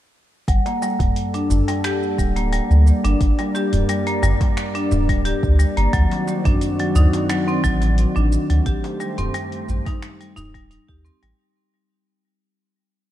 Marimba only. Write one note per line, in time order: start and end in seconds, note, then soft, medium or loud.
0.48 0.64 G3 medium
0.66 0.81 A#3 medium
0.82 1.32 G3 medium
1.34 1.67 D4 medium
1.68 1.77 G3 medium
1.84 1.95 G4 medium
2.18 2.35 G3 medium
2.36 2.51 A#3 medium
2.52 3.03 G3 medium
3.04 3.37 D4 medium
3.39 3.48 G3 medium
3.55 3.65 G4 medium
3.89 4.05 G3 medium
4.07 4.21 A#3 medium
4.23 4.73 G3 medium
4.75 5.07 D4 medium
5.09 5.18 G3 medium
5.25 5.35 G4 medium
5.59 5.75 G3 medium
5.77 5.92 A#3 medium
5.93 6.44 F#3 medium
6.45 6.78 D4 medium
6.80 6.89 F#3 medium
6.96 7.06 D#4 medium
7.30 7.46 F#3 medium
7.48 7.62 C4 medium
7.64 8.14 F#3 loud
8.16 8.48 D4 medium
8.50 8.59 F#3 medium
8.66 8.76 G4 medium
9.00 9.16 G3 medium
9.18 9.33 C4 medium
9.34 9.85 G3 loud
9.86 10.19 D#4 medium
10.20 10.30 G3 medium
10.36 10.53 D#4 loud
10.54 10.69 G3 loud
10.71 10.87 D#4 medium
10.88 11.03 G4 medium
11.05 11.21 C4 medium
11.22 11.37 G3 loud